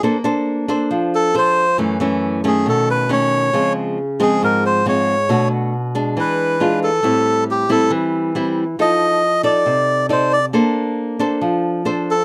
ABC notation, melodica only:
X:1
M:4/4
L:1/8
Q:1/4=137
K:Bblyd
V:1 name="Melodica"
z4 z A c2 | z3 _A =A =B ^c2- | ^c z2 _A B =c _d2- | _d z3 =B3 A- |
A2 G A z4 | _e3 d3 c d | z6 z A |]